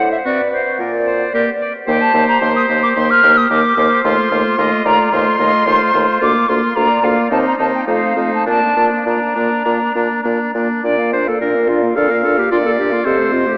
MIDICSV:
0, 0, Header, 1, 6, 480
1, 0, Start_track
1, 0, Key_signature, -2, "major"
1, 0, Tempo, 542495
1, 1658, Time_signature, 4, 2, 24, 8
1, 6464, Tempo, 588235
1, 9344, Tempo, 551978
1, 11728, End_track
2, 0, Start_track
2, 0, Title_t, "Flute"
2, 0, Program_c, 0, 73
2, 0, Note_on_c, 0, 78, 71
2, 96, Note_off_c, 0, 78, 0
2, 101, Note_on_c, 0, 76, 58
2, 154, Note_off_c, 0, 76, 0
2, 224, Note_on_c, 0, 74, 64
2, 457, Note_off_c, 0, 74, 0
2, 462, Note_on_c, 0, 72, 62
2, 704, Note_on_c, 0, 74, 61
2, 717, Note_off_c, 0, 72, 0
2, 1423, Note_off_c, 0, 74, 0
2, 1662, Note_on_c, 0, 79, 70
2, 1777, Note_on_c, 0, 81, 69
2, 1790, Note_off_c, 0, 79, 0
2, 2010, Note_off_c, 0, 81, 0
2, 2015, Note_on_c, 0, 82, 71
2, 2125, Note_off_c, 0, 82, 0
2, 2130, Note_on_c, 0, 84, 76
2, 2251, Note_off_c, 0, 84, 0
2, 2263, Note_on_c, 0, 87, 64
2, 2317, Note_off_c, 0, 87, 0
2, 2501, Note_on_c, 0, 86, 69
2, 2554, Note_off_c, 0, 86, 0
2, 2617, Note_on_c, 0, 84, 79
2, 2744, Note_on_c, 0, 89, 78
2, 2758, Note_off_c, 0, 84, 0
2, 2982, Note_on_c, 0, 87, 65
2, 2996, Note_off_c, 0, 89, 0
2, 3099, Note_on_c, 0, 86, 79
2, 3112, Note_off_c, 0, 87, 0
2, 3568, Note_off_c, 0, 86, 0
2, 3573, Note_on_c, 0, 84, 80
2, 4296, Note_on_c, 0, 82, 72
2, 4309, Note_off_c, 0, 84, 0
2, 4534, Note_on_c, 0, 84, 85
2, 4548, Note_off_c, 0, 82, 0
2, 5497, Note_off_c, 0, 84, 0
2, 5504, Note_on_c, 0, 86, 66
2, 5738, Note_on_c, 0, 84, 69
2, 5752, Note_off_c, 0, 86, 0
2, 5979, Note_on_c, 0, 82, 66
2, 5992, Note_off_c, 0, 84, 0
2, 6229, Note_on_c, 0, 77, 59
2, 6242, Note_off_c, 0, 82, 0
2, 6468, Note_off_c, 0, 77, 0
2, 6473, Note_on_c, 0, 81, 64
2, 6522, Note_off_c, 0, 81, 0
2, 6597, Note_on_c, 0, 82, 50
2, 6645, Note_off_c, 0, 82, 0
2, 6705, Note_on_c, 0, 81, 55
2, 6754, Note_off_c, 0, 81, 0
2, 6825, Note_on_c, 0, 79, 52
2, 6874, Note_off_c, 0, 79, 0
2, 6940, Note_on_c, 0, 77, 48
2, 7288, Note_off_c, 0, 77, 0
2, 7306, Note_on_c, 0, 81, 47
2, 7416, Note_off_c, 0, 81, 0
2, 7421, Note_on_c, 0, 81, 62
2, 7728, Note_off_c, 0, 81, 0
2, 7903, Note_on_c, 0, 82, 47
2, 9077, Note_off_c, 0, 82, 0
2, 9353, Note_on_c, 0, 74, 43
2, 9471, Note_on_c, 0, 77, 41
2, 9484, Note_off_c, 0, 74, 0
2, 9591, Note_on_c, 0, 74, 40
2, 9604, Note_off_c, 0, 77, 0
2, 9719, Note_on_c, 0, 77, 37
2, 9732, Note_off_c, 0, 74, 0
2, 9832, Note_off_c, 0, 77, 0
2, 9837, Note_on_c, 0, 74, 39
2, 9960, Note_on_c, 0, 77, 39
2, 9973, Note_off_c, 0, 74, 0
2, 10085, Note_on_c, 0, 74, 41
2, 10098, Note_off_c, 0, 77, 0
2, 10206, Note_on_c, 0, 77, 38
2, 10219, Note_off_c, 0, 74, 0
2, 10316, Note_off_c, 0, 77, 0
2, 10322, Note_on_c, 0, 74, 42
2, 10438, Note_on_c, 0, 77, 38
2, 10451, Note_off_c, 0, 74, 0
2, 10556, Note_on_c, 0, 74, 37
2, 10569, Note_off_c, 0, 77, 0
2, 10671, Note_on_c, 0, 77, 39
2, 10684, Note_off_c, 0, 74, 0
2, 10782, Note_off_c, 0, 77, 0
2, 10787, Note_on_c, 0, 74, 37
2, 10905, Note_on_c, 0, 77, 39
2, 10918, Note_off_c, 0, 74, 0
2, 11026, Note_on_c, 0, 74, 41
2, 11039, Note_off_c, 0, 77, 0
2, 11140, Note_on_c, 0, 77, 37
2, 11153, Note_off_c, 0, 74, 0
2, 11257, Note_off_c, 0, 77, 0
2, 11262, Note_on_c, 0, 75, 42
2, 11383, Note_on_c, 0, 72, 42
2, 11396, Note_off_c, 0, 75, 0
2, 11502, Note_on_c, 0, 75, 39
2, 11515, Note_off_c, 0, 72, 0
2, 11622, Note_on_c, 0, 72, 37
2, 11635, Note_off_c, 0, 75, 0
2, 11728, Note_off_c, 0, 72, 0
2, 11728, End_track
3, 0, Start_track
3, 0, Title_t, "Clarinet"
3, 0, Program_c, 1, 71
3, 0, Note_on_c, 1, 72, 53
3, 228, Note_on_c, 1, 71, 55
3, 241, Note_off_c, 1, 72, 0
3, 699, Note_off_c, 1, 71, 0
3, 705, Note_on_c, 1, 70, 52
3, 813, Note_off_c, 1, 70, 0
3, 940, Note_on_c, 1, 72, 58
3, 1178, Note_off_c, 1, 72, 0
3, 1189, Note_on_c, 1, 70, 56
3, 1295, Note_off_c, 1, 70, 0
3, 1426, Note_on_c, 1, 74, 63
3, 1532, Note_off_c, 1, 74, 0
3, 1657, Note_on_c, 1, 72, 73
3, 3066, Note_off_c, 1, 72, 0
3, 3101, Note_on_c, 1, 70, 57
3, 3206, Note_off_c, 1, 70, 0
3, 3344, Note_on_c, 1, 72, 57
3, 4057, Note_on_c, 1, 75, 65
3, 4070, Note_off_c, 1, 72, 0
3, 4301, Note_on_c, 1, 74, 54
3, 4314, Note_off_c, 1, 75, 0
3, 4539, Note_on_c, 1, 72, 52
3, 4553, Note_off_c, 1, 74, 0
3, 4772, Note_off_c, 1, 72, 0
3, 4781, Note_on_c, 1, 75, 60
3, 5016, Note_on_c, 1, 72, 63
3, 5030, Note_off_c, 1, 75, 0
3, 5739, Note_off_c, 1, 72, 0
3, 5983, Note_on_c, 1, 74, 56
3, 6466, Note_on_c, 1, 72, 47
3, 6478, Note_off_c, 1, 74, 0
3, 6918, Note_off_c, 1, 72, 0
3, 6923, Note_on_c, 1, 72, 50
3, 7410, Note_on_c, 1, 74, 46
3, 7422, Note_off_c, 1, 72, 0
3, 9107, Note_off_c, 1, 74, 0
3, 9345, Note_on_c, 1, 74, 70
3, 9577, Note_off_c, 1, 74, 0
3, 9598, Note_on_c, 1, 72, 63
3, 9730, Note_on_c, 1, 69, 58
3, 9743, Note_off_c, 1, 72, 0
3, 9838, Note_off_c, 1, 69, 0
3, 9843, Note_on_c, 1, 70, 70
3, 10081, Note_on_c, 1, 65, 58
3, 10094, Note_off_c, 1, 70, 0
3, 10324, Note_on_c, 1, 69, 70
3, 10337, Note_off_c, 1, 65, 0
3, 10452, Note_on_c, 1, 70, 56
3, 10465, Note_off_c, 1, 69, 0
3, 10560, Note_off_c, 1, 70, 0
3, 10565, Note_on_c, 1, 69, 62
3, 10692, Note_on_c, 1, 67, 57
3, 10705, Note_off_c, 1, 69, 0
3, 10800, Note_off_c, 1, 67, 0
3, 10805, Note_on_c, 1, 65, 67
3, 10858, Note_off_c, 1, 65, 0
3, 10927, Note_on_c, 1, 69, 64
3, 10978, Note_off_c, 1, 69, 0
3, 11043, Note_on_c, 1, 67, 58
3, 11160, Note_on_c, 1, 65, 62
3, 11173, Note_off_c, 1, 67, 0
3, 11275, Note_on_c, 1, 69, 67
3, 11288, Note_off_c, 1, 65, 0
3, 11510, Note_on_c, 1, 65, 58
3, 11523, Note_off_c, 1, 69, 0
3, 11636, Note_on_c, 1, 67, 61
3, 11649, Note_off_c, 1, 65, 0
3, 11728, Note_off_c, 1, 67, 0
3, 11728, End_track
4, 0, Start_track
4, 0, Title_t, "Oboe"
4, 0, Program_c, 2, 68
4, 225, Note_on_c, 2, 66, 44
4, 367, Note_off_c, 2, 66, 0
4, 1188, Note_on_c, 2, 67, 46
4, 1329, Note_off_c, 2, 67, 0
4, 1658, Note_on_c, 2, 67, 58
4, 1890, Note_off_c, 2, 67, 0
4, 1896, Note_on_c, 2, 67, 49
4, 2131, Note_off_c, 2, 67, 0
4, 2136, Note_on_c, 2, 67, 50
4, 2363, Note_off_c, 2, 67, 0
4, 2368, Note_on_c, 2, 67, 47
4, 2609, Note_off_c, 2, 67, 0
4, 2616, Note_on_c, 2, 67, 51
4, 2846, Note_off_c, 2, 67, 0
4, 2852, Note_on_c, 2, 67, 51
4, 3086, Note_off_c, 2, 67, 0
4, 3091, Note_on_c, 2, 67, 44
4, 3323, Note_off_c, 2, 67, 0
4, 3328, Note_on_c, 2, 67, 42
4, 3565, Note_off_c, 2, 67, 0
4, 3572, Note_on_c, 2, 65, 51
4, 3807, Note_off_c, 2, 65, 0
4, 3811, Note_on_c, 2, 65, 50
4, 4044, Note_off_c, 2, 65, 0
4, 4049, Note_on_c, 2, 65, 50
4, 4285, Note_off_c, 2, 65, 0
4, 4291, Note_on_c, 2, 65, 46
4, 4517, Note_off_c, 2, 65, 0
4, 4522, Note_on_c, 2, 65, 51
4, 4755, Note_off_c, 2, 65, 0
4, 4760, Note_on_c, 2, 65, 49
4, 4999, Note_off_c, 2, 65, 0
4, 5008, Note_on_c, 2, 65, 51
4, 5236, Note_off_c, 2, 65, 0
4, 5241, Note_on_c, 2, 65, 42
4, 5482, Note_off_c, 2, 65, 0
4, 5487, Note_on_c, 2, 65, 50
4, 5728, Note_off_c, 2, 65, 0
4, 5744, Note_on_c, 2, 65, 44
4, 5967, Note_off_c, 2, 65, 0
4, 5973, Note_on_c, 2, 65, 46
4, 6207, Note_off_c, 2, 65, 0
4, 6212, Note_on_c, 2, 65, 41
4, 6455, Note_off_c, 2, 65, 0
4, 6460, Note_on_c, 2, 63, 38
4, 6683, Note_off_c, 2, 63, 0
4, 6688, Note_on_c, 2, 63, 44
4, 6920, Note_off_c, 2, 63, 0
4, 6924, Note_on_c, 2, 63, 37
4, 7160, Note_off_c, 2, 63, 0
4, 7164, Note_on_c, 2, 63, 35
4, 7398, Note_off_c, 2, 63, 0
4, 7403, Note_on_c, 2, 62, 39
4, 7648, Note_off_c, 2, 62, 0
4, 7655, Note_on_c, 2, 62, 34
4, 7893, Note_off_c, 2, 62, 0
4, 7900, Note_on_c, 2, 62, 34
4, 8129, Note_off_c, 2, 62, 0
4, 8134, Note_on_c, 2, 62, 34
4, 8370, Note_off_c, 2, 62, 0
4, 8375, Note_on_c, 2, 62, 32
4, 8610, Note_off_c, 2, 62, 0
4, 8615, Note_on_c, 2, 62, 40
4, 8848, Note_off_c, 2, 62, 0
4, 8853, Note_on_c, 2, 62, 36
4, 9096, Note_off_c, 2, 62, 0
4, 9101, Note_on_c, 2, 62, 32
4, 9339, Note_off_c, 2, 62, 0
4, 10323, Note_on_c, 2, 77, 49
4, 10768, Note_off_c, 2, 77, 0
4, 10799, Note_on_c, 2, 74, 53
4, 11266, Note_on_c, 2, 72, 49
4, 11279, Note_off_c, 2, 74, 0
4, 11728, Note_off_c, 2, 72, 0
4, 11728, End_track
5, 0, Start_track
5, 0, Title_t, "French horn"
5, 0, Program_c, 3, 60
5, 223, Note_on_c, 3, 60, 37
5, 364, Note_off_c, 3, 60, 0
5, 1179, Note_on_c, 3, 58, 48
5, 1321, Note_off_c, 3, 58, 0
5, 1655, Note_on_c, 3, 58, 53
5, 1889, Note_off_c, 3, 58, 0
5, 1893, Note_on_c, 3, 58, 45
5, 2130, Note_off_c, 3, 58, 0
5, 2136, Note_on_c, 3, 58, 53
5, 2373, Note_off_c, 3, 58, 0
5, 2382, Note_on_c, 3, 58, 45
5, 2616, Note_off_c, 3, 58, 0
5, 2625, Note_on_c, 3, 58, 53
5, 2856, Note_off_c, 3, 58, 0
5, 2864, Note_on_c, 3, 58, 52
5, 3094, Note_off_c, 3, 58, 0
5, 3099, Note_on_c, 3, 58, 55
5, 3327, Note_off_c, 3, 58, 0
5, 3332, Note_on_c, 3, 58, 48
5, 3567, Note_off_c, 3, 58, 0
5, 3578, Note_on_c, 3, 57, 51
5, 3810, Note_off_c, 3, 57, 0
5, 3816, Note_on_c, 3, 57, 46
5, 4048, Note_off_c, 3, 57, 0
5, 4058, Note_on_c, 3, 57, 47
5, 4289, Note_off_c, 3, 57, 0
5, 4298, Note_on_c, 3, 57, 49
5, 4528, Note_off_c, 3, 57, 0
5, 4532, Note_on_c, 3, 57, 48
5, 4764, Note_off_c, 3, 57, 0
5, 4775, Note_on_c, 3, 57, 46
5, 5003, Note_off_c, 3, 57, 0
5, 5008, Note_on_c, 3, 57, 46
5, 5246, Note_off_c, 3, 57, 0
5, 5252, Note_on_c, 3, 57, 49
5, 5490, Note_off_c, 3, 57, 0
5, 5494, Note_on_c, 3, 58, 49
5, 5731, Note_off_c, 3, 58, 0
5, 5738, Note_on_c, 3, 58, 46
5, 5974, Note_off_c, 3, 58, 0
5, 5980, Note_on_c, 3, 58, 41
5, 6217, Note_off_c, 3, 58, 0
5, 6221, Note_on_c, 3, 58, 40
5, 6462, Note_off_c, 3, 58, 0
5, 6468, Note_on_c, 3, 60, 44
5, 6686, Note_off_c, 3, 60, 0
5, 6691, Note_on_c, 3, 60, 38
5, 6921, Note_off_c, 3, 60, 0
5, 6925, Note_on_c, 3, 57, 43
5, 7160, Note_off_c, 3, 57, 0
5, 7164, Note_on_c, 3, 57, 36
5, 7406, Note_off_c, 3, 57, 0
5, 7410, Note_on_c, 3, 58, 40
5, 7648, Note_off_c, 3, 58, 0
5, 7653, Note_on_c, 3, 58, 36
5, 7892, Note_off_c, 3, 58, 0
5, 7900, Note_on_c, 3, 58, 34
5, 8137, Note_off_c, 3, 58, 0
5, 8141, Note_on_c, 3, 58, 35
5, 8380, Note_off_c, 3, 58, 0
5, 8386, Note_on_c, 3, 58, 38
5, 8620, Note_off_c, 3, 58, 0
5, 8625, Note_on_c, 3, 58, 35
5, 8856, Note_off_c, 3, 58, 0
5, 8860, Note_on_c, 3, 58, 41
5, 9100, Note_off_c, 3, 58, 0
5, 9110, Note_on_c, 3, 58, 36
5, 9343, Note_off_c, 3, 58, 0
5, 9351, Note_on_c, 3, 62, 37
5, 9473, Note_on_c, 3, 58, 37
5, 9486, Note_off_c, 3, 62, 0
5, 9607, Note_on_c, 3, 62, 39
5, 9620, Note_off_c, 3, 58, 0
5, 9729, Note_on_c, 3, 58, 34
5, 9742, Note_off_c, 3, 62, 0
5, 9845, Note_off_c, 3, 58, 0
5, 9850, Note_on_c, 3, 62, 38
5, 9970, Note_on_c, 3, 58, 33
5, 9983, Note_off_c, 3, 62, 0
5, 10092, Note_on_c, 3, 62, 43
5, 10105, Note_off_c, 3, 58, 0
5, 10204, Note_on_c, 3, 58, 34
5, 10217, Note_off_c, 3, 62, 0
5, 10325, Note_off_c, 3, 58, 0
5, 10330, Note_on_c, 3, 62, 46
5, 10448, Note_on_c, 3, 58, 38
5, 10461, Note_off_c, 3, 62, 0
5, 10567, Note_on_c, 3, 62, 41
5, 10580, Note_off_c, 3, 58, 0
5, 10689, Note_on_c, 3, 58, 37
5, 10702, Note_off_c, 3, 62, 0
5, 10805, Note_off_c, 3, 58, 0
5, 10812, Note_on_c, 3, 62, 43
5, 10924, Note_on_c, 3, 58, 38
5, 10937, Note_off_c, 3, 62, 0
5, 11045, Note_on_c, 3, 62, 41
5, 11058, Note_off_c, 3, 58, 0
5, 11159, Note_on_c, 3, 58, 35
5, 11172, Note_off_c, 3, 62, 0
5, 11274, Note_off_c, 3, 58, 0
5, 11280, Note_on_c, 3, 60, 39
5, 11393, Note_on_c, 3, 57, 41
5, 11406, Note_off_c, 3, 60, 0
5, 11507, Note_on_c, 3, 60, 43
5, 11521, Note_off_c, 3, 57, 0
5, 11629, Note_on_c, 3, 57, 38
5, 11642, Note_off_c, 3, 60, 0
5, 11728, Note_off_c, 3, 57, 0
5, 11728, End_track
6, 0, Start_track
6, 0, Title_t, "Bassoon"
6, 0, Program_c, 4, 70
6, 0, Note_on_c, 4, 45, 47
6, 141, Note_off_c, 4, 45, 0
6, 700, Note_on_c, 4, 46, 54
6, 1103, Note_off_c, 4, 46, 0
6, 1657, Note_on_c, 4, 39, 54
6, 1764, Note_off_c, 4, 39, 0
6, 1891, Note_on_c, 4, 39, 51
6, 2000, Note_off_c, 4, 39, 0
6, 2133, Note_on_c, 4, 39, 51
6, 2243, Note_off_c, 4, 39, 0
6, 2377, Note_on_c, 4, 39, 47
6, 2486, Note_off_c, 4, 39, 0
6, 2620, Note_on_c, 4, 39, 52
6, 2727, Note_off_c, 4, 39, 0
6, 2857, Note_on_c, 4, 39, 55
6, 2965, Note_off_c, 4, 39, 0
6, 3095, Note_on_c, 4, 39, 51
6, 3202, Note_off_c, 4, 39, 0
6, 3335, Note_on_c, 4, 39, 53
6, 3442, Note_off_c, 4, 39, 0
6, 3573, Note_on_c, 4, 39, 59
6, 3681, Note_off_c, 4, 39, 0
6, 3813, Note_on_c, 4, 39, 48
6, 3920, Note_off_c, 4, 39, 0
6, 4048, Note_on_c, 4, 39, 57
6, 4156, Note_off_c, 4, 39, 0
6, 4290, Note_on_c, 4, 39, 49
6, 4397, Note_off_c, 4, 39, 0
6, 4533, Note_on_c, 4, 39, 58
6, 4639, Note_off_c, 4, 39, 0
6, 4770, Note_on_c, 4, 39, 49
6, 4878, Note_off_c, 4, 39, 0
6, 5011, Note_on_c, 4, 39, 55
6, 5119, Note_off_c, 4, 39, 0
6, 5254, Note_on_c, 4, 39, 56
6, 5363, Note_off_c, 4, 39, 0
6, 5495, Note_on_c, 4, 38, 52
6, 5604, Note_off_c, 4, 38, 0
6, 5737, Note_on_c, 4, 38, 48
6, 5846, Note_off_c, 4, 38, 0
6, 5979, Note_on_c, 4, 38, 48
6, 6088, Note_off_c, 4, 38, 0
6, 6222, Note_on_c, 4, 38, 43
6, 6332, Note_off_c, 4, 38, 0
6, 6469, Note_on_c, 4, 39, 53
6, 6572, Note_off_c, 4, 39, 0
6, 6696, Note_on_c, 4, 39, 39
6, 6800, Note_off_c, 4, 39, 0
6, 6927, Note_on_c, 4, 41, 43
6, 7034, Note_off_c, 4, 41, 0
6, 7162, Note_on_c, 4, 41, 45
6, 7273, Note_off_c, 4, 41, 0
6, 7408, Note_on_c, 4, 46, 42
6, 7519, Note_off_c, 4, 46, 0
6, 7652, Note_on_c, 4, 46, 38
6, 7762, Note_off_c, 4, 46, 0
6, 7893, Note_on_c, 4, 46, 39
6, 8003, Note_off_c, 4, 46, 0
6, 8138, Note_on_c, 4, 46, 36
6, 8248, Note_off_c, 4, 46, 0
6, 8380, Note_on_c, 4, 46, 38
6, 8490, Note_off_c, 4, 46, 0
6, 8621, Note_on_c, 4, 46, 38
6, 8730, Note_off_c, 4, 46, 0
6, 8865, Note_on_c, 4, 46, 37
6, 8974, Note_off_c, 4, 46, 0
6, 9108, Note_on_c, 4, 46, 41
6, 9215, Note_off_c, 4, 46, 0
6, 9344, Note_on_c, 4, 46, 47
6, 9781, Note_off_c, 4, 46, 0
6, 9841, Note_on_c, 4, 46, 48
6, 10269, Note_off_c, 4, 46, 0
6, 10323, Note_on_c, 4, 46, 52
6, 10746, Note_off_c, 4, 46, 0
6, 10801, Note_on_c, 4, 46, 45
6, 11216, Note_off_c, 4, 46, 0
6, 11271, Note_on_c, 4, 48, 54
6, 11690, Note_off_c, 4, 48, 0
6, 11728, End_track
0, 0, End_of_file